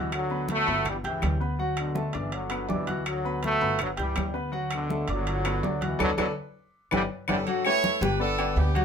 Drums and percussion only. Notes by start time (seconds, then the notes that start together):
0.12 high conga, high timbale, claves
0.30 high conga
0.49 high conga, high timbale, low timbale
0.67 high conga
0.85 high conga, low conga, high timbale, claves
1.04 high conga, low conga, high timbale
1.22 high conga, high timbale, low timbale, claves
1.42 high conga
1.60 high conga
1.77 high conga, high timbale, claves
1.95 high conga, low timbale
2.13 high timbale
2.32 high conga, high timbale
2.50 high conga, high timbale, claves
2.69 high conga, low timbale
2.87 high conga, high timbale
3.06 high conga, high timbale, claves
3.25 high conga
3.43 high conga, high timbale, low timbale
3.63 high conga
3.79 high conga, low conga, high timbale, claves
3.97 high conga, low conga, high timbale
4.16 high conga, high timbale, low timbale, claves
4.36 high conga
4.53 high conga
4.71 high conga, high timbale, claves
4.89 high conga, low timbale
5.08 high timbale
5.27 high conga, high timbale
5.45 high conga, high timbale, claves
5.63 high conga, low timbale
5.82 high conga, high timbale
6.00 high conga, high timbale, claves
6.18 high conga, high timbale, claves
6.91 high conga, high timbale, claves
7.28 high conga, high timbale, claves
7.47 high conga, low agogo
7.65 high conga, low agogo, claves
7.84 high conga, low timbale
8.02 high conga, low agogo
8.21 high conga
8.38 high conga, low agogo, claves
8.57 high conga, low timbale
8.75 high conga, low agogo